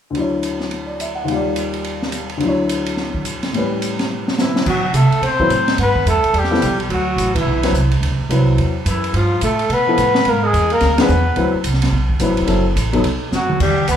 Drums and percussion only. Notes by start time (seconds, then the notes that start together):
0.15 ride
0.43 hi-hat pedal, ride
0.60 snare
0.71 ride
1.00 hi-hat pedal, ride
1.28 ride
1.56 hi-hat pedal, ride
1.74 ride
1.84 ride
2.02 snare
2.12 hi-hat pedal, ride
2.29 ride
2.40 ride
2.69 hi-hat pedal, ride
2.86 ride
2.97 snare
3.14 kick
3.25 hi-hat pedal, ride
3.43 snare, ride
3.54 ride
3.82 hi-hat pedal, ride
3.99 snare, ride
4.28 snare
4.38 snare, hi-hat pedal
4.56 snare
4.66 kick, crash
4.94 hi-hat pedal, ride
5.12 ride
5.23 ride
5.40 kick
5.50 hi-hat pedal, ride
5.68 snare, ride
5.78 ride
5.95 kick
6.07 hi-hat pedal, ride
6.24 ride
6.34 ride
6.44 snare
6.54 snare
6.62 hi-hat pedal, ride
6.80 ride
6.90 ride
7.18 hi-hat pedal, ride
7.35 kick, ride
7.63 snare, ride
7.74 hi-hat pedal
7.92 ride
8.03 ride
8.31 hi-hat pedal, ride
8.58 ride
8.86 hi-hat pedal, ride
9.04 ride
9.14 ride
9.41 hi-hat pedal, ride
9.59 ride
9.70 ride
9.98 hi-hat pedal, ride
10.15 snare
10.25 ride
10.54 hi-hat pedal, ride
10.70 ride
10.81 snare, ride
10.98 snare, ride
11.08 hi-hat pedal
11.36 ride
11.64 hi-hat pedal, ride
11.74 snare
11.82 snare, ride
12.10 kick
12.20 hi-hat pedal, ride
12.37 ride
12.48 ride
12.77 hi-hat pedal, ride
12.93 ride
13.04 ride
13.32 snare, hi-hat pedal
13.50 mid tom
13.60 kick, crash
13.88 hi-hat pedal, ride